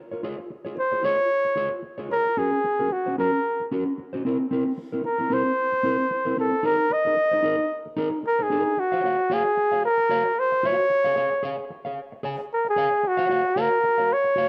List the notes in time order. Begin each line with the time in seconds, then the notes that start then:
0.11 F4 A#4 C#5
0.23 F4 G#4 C#5
0.38 muted clean electric guitar stroke
0.50 muted clean electric guitar stroke
0.65 F4 G#4 C#5
0.77 C5, muted clean electric guitar stroke
0.92 F4 G#4 C#5
1.03 F4 G#4 C#5
1.18 muted clean electric guitar stroke
1.45 muted clean electric guitar stroke
1.56 F4 G#4 C#5
1.71 muted clean electric guitar stroke
1.83 muted clean electric guitar stroke
1.98 F4 G#4 C#5
2.10 F4 G#4 A#4 C#5
2.25 muted clean electric guitar stroke
2.37 C#4 F#4 G#4 A#4
2.53 muted clean electric guitar stroke
2.64 muted clean electric guitar stroke
2.79 C#4 F#4 A#4
2.91 F#4, muted clean electric guitar stroke
3.06 C#4 F#4 C5
3.18 C#4 F#4 A#4
3.33 muted clean electric guitar stroke
3.60 muted clean electric guitar stroke
3.71 C#4 F#4 A#4
3.86 muted clean electric guitar stroke
3.98 muted clean electric guitar stroke
4.13 C#4 F#4 C5
4.25 C4 E4 A#4
4.40 muted clean electric guitar stroke
4.51 C4 E4 A#4
4.66 muted clean electric guitar stroke
4.78 muted clean electric guitar stroke
4.92 C4 E4 A#4
5.04 A#4, muted clean electric guitar stroke
5.18 C4 E4 A#4
5.30 C4 E4 A#4 C5
5.45 muted clean electric guitar stroke
5.72 muted clean electric guitar stroke
5.83 C4 E4 A#4
5.99 muted clean electric guitar stroke
6.11 muted clean electric guitar stroke
6.25 C4 E4 A#4
6.37 C4 E4 A4 A#4
6.52 muted clean electric guitar stroke
6.63 D#4 G#4 A#4
6.78 muted clean electric guitar stroke
6.90 D#5, muted clean electric guitar stroke
7.05 D#4 G#4 A#4
7.17 muted clean electric guitar stroke
7.31 D#4 G#4 C5
7.43 D#4 G#4 A#4
7.58 muted clean electric guitar stroke
7.86 muted clean electric guitar stroke
7.97 D#4 G#4 A#4
8.11 muted clean electric guitar stroke
8.23 muted clean electric guitar stroke
8.27 A#4
8.39 D#4 G#4 C5
8.50 D#4 G#4 A#4
8.66 muted clean electric guitar stroke
8.77 F#4, muted clean electric guitar stroke
8.92 F#4 C#5 F#5
9.04 F#4 C#5 F5
9.19 muted clean electric guitar stroke
9.30 F#4 G#4 C#5 F5
9.46 muted clean electric guitar stroke
9.57 muted clean electric guitar stroke
9.72 F#4 C#5 F5
9.85 A#4
9.98 muted clean electric guitar stroke
10.09 F#4 C#5 F5
10.26 muted clean electric guitar stroke
10.39 C5
10.52 muted clean electric guitar stroke
10.63 F#4 C#5 F5
10.79 muted clean electric guitar stroke
10.90 muted clean electric guitar stroke
11.04 G#4 C#5 F5
11.16 G#4 C#5 F5
11.32 muted clean electric guitar stroke
11.43 G#4 C#5 F5
11.58 muted clean electric guitar stroke
11.70 muted clean electric guitar stroke
11.85 G#4 C#5 F5
12.12 muted clean electric guitar stroke
12.23 G#4 C#5 G#5
12.39 muted clean electric guitar stroke
12.53 A#4
12.65 muted clean electric guitar stroke
12.69 G#4
12.76 G#4 C#5 F5
12.92 muted clean electric guitar stroke
13.03 muted clean electric guitar stroke
13.08 F#4
13.17 F#4 C#5 F#5
13.30 F#4 C#5 F5
13.45 muted clean electric guitar stroke
13.56 F#4 C#5 F5
13.60 A#4
13.71 muted clean electric guitar stroke
13.84 muted clean electric guitar stroke
13.98 F#4 C#5 F5
14.13 C#5
14.24 muted clean electric guitar stroke
14.36 F#4 C#5 F5